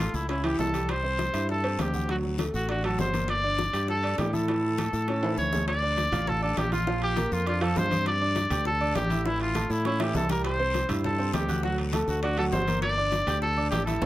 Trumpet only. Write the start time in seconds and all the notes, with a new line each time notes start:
Already playing: F4
0.15 E4
0.30 E4
0.45 G4
0.59 A4
0.90 C5
1.50 A4
1.81 G4
2.11 F#4
2.55 F#4
2.70 F#4
2.85 A4
3.00 C5
3.30 D5
3.90 A4
4.19 G4
4.34 A4
5.38 C#5
5.68 D5
6.29 A4
6.43 A4
6.58 G4
6.73 F4
7.04 G4
7.33 F4
7.48 F4
7.62 A4
7.77 C5
8.07 D5
8.66 A4
8.96 G4
9.26 E4
9.42 F4
9.71 E4
9.87 E4
10.02 G4
10.16 A4
10.31 A#4
10.45 C5
11.05 A4
11.34 G4
11.65 F#4
12.09 F#4
12.23 F#4
12.39 A4
12.52 C5
12.82 D5
13.42 A4
13.71 G4
13.86 A4